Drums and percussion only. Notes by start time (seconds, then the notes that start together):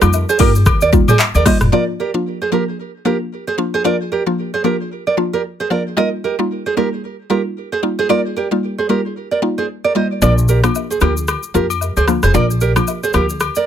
0.02 cross-stick, high agogo, shaker
0.13 low woodblock, shaker
0.29 shaker
0.39 kick, open hi-hat, high agogo, shaker
0.55 shaker
0.66 kick, cross-stick, high agogo, shaker
0.81 shaker
0.93 kick, shaker
1.08 mid tom, high agogo, shaker
1.19 clap, low woodblock, shaker
1.35 high agogo, shaker
1.46 kick, cross-stick, open hi-hat, shaker
1.61 cross-stick, mid tom, shaker
10.22 high agogo, shaker
10.38 shaker
10.48 shaker
10.64 cross-stick, high agogo, shaker
10.75 low woodblock, shaker
10.91 shaker
11.01 cross-stick, high agogo, shaker
11.17 shaker
11.28 cross-stick, high agogo, shaker
11.43 shaker
11.55 shaker
11.70 high agogo, shaker
11.81 low woodblock, shaker
11.97 high agogo, shaker
12.08 cross-stick, shaker
12.23 cross-stick, shaker
12.34 high agogo, shaker
12.50 shaker
12.61 shaker
12.76 cross-stick, high agogo, shaker
12.87 low woodblock, shaker
13.03 shaker
13.13 cross-stick, high agogo, shaker
13.29 shaker
13.40 cross-stick, high agogo, shaker
13.55 shaker